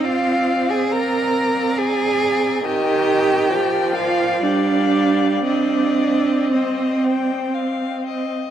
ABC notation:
X:1
M:3/4
L:1/16
Q:1/4=66
K:Cm
V:1 name="Violin"
f3 a b4 a4 | g6 f2 d4 | d4 c4 z4 |]
V:2 name="Violin"
d4 d8 | e4 d4 f4 | e4 e2 g2 f2 e2 |]
V:3 name="Cello"
F3 A B4 A4 | G6 F2 D4 | D4 C4 z4 |]
V:4 name="Viola" clef=bass
C12 | E,4 F,4 G,4 | C12 |]